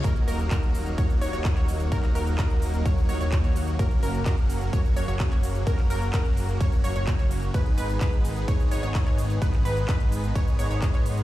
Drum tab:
RD |x---x---x---x---|x---x---x---x---|x---x---x---x---|x---x---x---x---|
HH |xxoxxxoxx-oxxxox|xxoxxxoxx-oxxxox|xxoxxxoxx-oxxxox|xxoxxxoxxxoxxxox|
SH |x-xxx-xxxxxxx-xx|x-xxx-xxxxxxx-xx|x-xxx-xxxxxxx-xx|x-xxx-xxxxxxx-xx|
CP |----x-------xx--|-x--x-------x---|----x-------xx--|-x--x-------x---|
BD |o---o---o---o---|o---o---o---o---|o---o---o---o---|o---o---o---o---|

RD |x---x---x---x---|x---x---x---x---|
HH |xxoxxxoxx-oxxxox|xxoxxxoxx-oxxxox|
SH |x-xxx-xxxxxxx-xx|x-xxx-xxxxxxx-xx|
CP |----x-------xx--|-x--x-------x---|
BD |o---o---o---o---|o---o---o---o---|